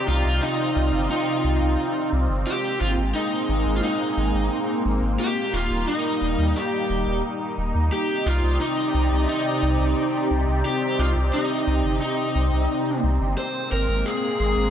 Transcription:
Already playing: C3 C4 D#4 F4 D5
0.08 C2 F4
0.25 C2
0.42 D#4
0.76 C2
0.93 G1
1.10 D#4
1.45 C2
1.62 C2
2.13 C2
2.30 G1
2.47 G#3 A#3 G4
2.81 G#1 F4
2.98 G#1
3.15 D#4
3.49 G#1
3.66 G#1
3.76 F4
3.83 D#4
4.17 G#1
4.34 G#1
4.85 G#1
5.02 G#1
5.19 G3 D#4 G4
5.53 D#1 F4
5.71 D#1
5.88 D#4
6.22 D#1
6.39 D#2
6.56 G4
6.90 D#1
7.07 D#1
7.58 D#1
7.75 D#2
7.92 C3 C4 G4 D5
8.26 C2 F4
8.43 C2
8.61 D#4
8.95 C2
9.12 C2
9.29 D#4
9.63 C2
9.80 C2
10.31 C2
10.48 C2
10.65 G4
10.99 C2 F4
11.16 C2
11.33 D#4
11.67 C2
11.84 G1
12.01 D#4
12.36 C2
12.53 C2
13.04 C2
13.21 G1
13.38 G#3 A#3 C5
13.72 G#1 A#4
13.89 G#1
14.06 G#4
14.40 G#1
14.57 G#1

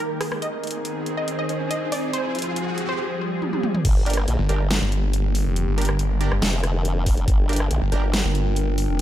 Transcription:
Already playing: D#3 A#3 D#4 G4 A#4 G5, riser
0.00 A#4
0.21 G#4, cross-stick, open hi-hat
0.32 cross-stick
0.42 D#3 C4 G#4 D#5, closed hi-hat
0.64 closed hi-hat
0.67 closed hi-hat
0.71 closed hi-hat
0.80 C5
0.85 closed hi-hat
1.06 closed hi-hat
1.17 D#5 G#5
1.28 closed hi-hat
1.39 D#5
1.49 closed hi-hat
1.71 D#5, closed hi-hat
1.92 D5, open hi-hat
2.13 F3 F4 C5, closed hi-hat
2.35 closed hi-hat
2.39 closed hi-hat
2.42 closed hi-hat
2.56 closed hi-hat
2.78 closed hi-hat
2.89 C5
2.99 swell
3.42 high tom
3.53 high tom
3.63 mid tom
3.74 mid tom
3.85 G1 D3 A#3 D4 G4, kick, closed hi-hat, crash
4.06 D4 G4 A#4, closed hi-hat
4.10 closed hi-hat
4.13 A#4, cross-stick, closed hi-hat
4.28 A#1, closed hi-hat
4.39 G1
4.48 G1 D4 G4 A#4 G5, closed hi-hat
4.71 snare, closed hi-hat
4.82 G1
4.92 closed hi-hat
5.13 closed hi-hat
5.35 open hi-hat
5.46 F1
5.56 closed hi-hat
5.67 G1
5.78 D4 G4 A#4, closed hi-hat
5.81 closed hi-hat
5.85 cross-stick, closed hi-hat
5.99 closed hi-hat
6.21 D4 G4 A#4, closed hi-hat
6.32 G1, cross-stick
6.42 F1, snare, closed hi-hat
6.64 cross-stick, closed hi-hat
6.85 closed hi-hat
7.06 kick, open hi-hat
7.17 closed hi-hat
7.28 G1 F4, kick, closed hi-hat
7.49 D4 G4 A#4, closed hi-hat
7.53 closed hi-hat
7.56 cross-stick, closed hi-hat
7.71 A#1, closed hi-hat
7.82 G1
7.92 G1 D4 G4 A#4, closed hi-hat
8.14 snare, closed hi-hat
8.25 G1
8.35 closed hi-hat
8.56 closed hi-hat
8.78 open hi-hat
8.89 F1

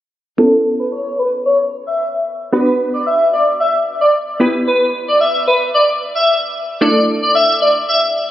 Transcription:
0.38 B3 C#4 E4 A4
0.80 B4
0.92 C#5
1.19 B4
1.46 C#5
1.87 E5
2.52 B3 D4 F#4 B4
2.94 D5
3.06 E5
3.33 D5
3.60 E5
4.01 D5
4.40 B3 E4 G4 B4
4.67 B4
5.08 D5
5.21 E5
5.47 B4
5.74 D5
6.15 E5
6.81 A3 D4 E4 A4 D5
7.22 D5
7.35 E5
7.62 D5
7.88 E5

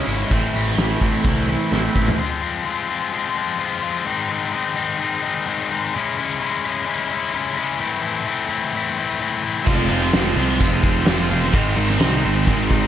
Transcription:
Already playing: C#3 G#3 C#4 E4
0.08 G#1 G#3 C#4 E4
0.31 A1 A2 E3 A3 C4 E4, kick, open hi-hat
0.54 A1 E3 A3 C4 E4
0.78 A1 A2 E3 A3 C4 E4, snare, open hi-hat
1.01 A1 A3 C4 E4, kick
1.24 C2 A2 E3 A3 C4 E4, kick, open hi-hat
1.48 E3 A3 C4 E4
1.72 A1 E3 A3 C4 E4, snare
1.96 A1 A3 C4 E4, kick
2.08 floor tom
2.17 F3 G#3 C4 F4
2.42 G#3 C4 F4
2.65 F3 G#3 C4 F4
2.88 F3 G#3 C4 F4
3.12 F3 G#3 C4 F4
3.35 G#3 C4 F4
3.59 F3 G#3 C4 F4
3.83 G#3 C4 F4
4.05 G#2 D#3 G#3 C4 D#4
4.29 G#3 C4 D#4
4.53 D#3 G#3 C4 D#4
4.76 G#2 D#3 G#3 C4 D#4
4.98 D#3 G#3 C4 D#4
5.23 G#3 C4 D#4
5.47 G#2 D#3 G#3 C4 D#4
5.71 G#3 C4 D#4
5.95 C#3 G#3 C#4 E4
6.17 G#3 C#4 E4
6.41 C#3 G#3 C#4 E4
6.65 C#3 G#3 C#4 E4
6.86 C#3 G#3 C#4 E4
7.11 G#3 C#4 E4
7.33 C#3 G#3 C#4 E4
7.57 G#3 C#4 E4
7.79 A2 E3 A3 C4 E4
8.03 A3 C4 E4
8.26 E3 A3 C4 E4
8.49 A2 E3 A3 C4 E4
8.74 E3 A3 C4 E4
8.98 A3 C4 E4
9.20 A2 E3 A3 C4 E4
9.44 A3 C4 E4
9.67 F1 F2 C3 F3 G#3 C4 F4, kick, crash
9.90 F1 G#3 C4 F4
10.13 F1 F3 G#3 C4 F4, snare, open hi-hat
10.36 C2 F3 G#3 C4 F4
10.60 F1 F2 C3 F3 G#3 C4 F4, kick, open hi-hat
10.64 F3
10.83 G#3 C4 F4, kick
11.06 F1 F3 G#3 C4 F4, snare, open hi-hat
11.30 F1 G#3 C4 F4
11.43 snare
11.53 G#1 G#2 D#3 G#3 C4 D#4, kick, open hi-hat
11.75 G#1 G#3 C4 D#4
11.89 snare
11.98 C2 G#2 D#3 G#3 C4 D#4, snare, open hi-hat
12.22 G#1 G#2 D#3 G#3 C4 D#4
12.46 G#1 G#2 D#3 G#3 C4 D#4, kick, open hi-hat
12.70 G#3 C4 D#4, kick

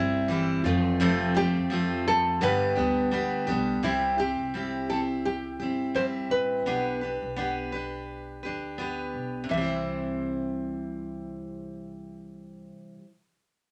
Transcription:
Already playing: G1 G3 C4 E4
0.28 E3 G3 C4 E4
0.64 F1 F3 A3 C4 F4
1.00 F2 C3 F3 A3 C4 F4
1.34 F3 A3 C4 F4 G4
1.56 F2
1.70 F3 A3 C4 F4
2.08 A4
2.41 G1 G2 D3 G3 B3 D4 G4 B4
2.75 D2 G3 B3 D4 G4
3.11 G3 B3 D4 G4
3.47 B1 G3 B3 D4 G4
3.82 C2 C3 G3 C4 E4 G4
4.18 C4 E4 G4
4.39 C2
4.54 G3 C4 E4 G4
4.89 C4 E4 G4 A4
5.25 G4
5.59 G1 C4 E4 G4
5.95 G3 C4 E4 G4 C5
6.30 A1 B4
6.65 B1 B3 D4 G4 B4
7.01 D4 G4 B4
7.22 B1
7.36 B3 D4 G4 B4
7.72 D4 G4 B4
8.43 D2 D4 G4 B4
8.78 B3 D4 G4 B4
9.14 B1
9.44 C3
9.49 C2 E3 E5
9.54 G3
9.58 C4 E4
9.65 C5

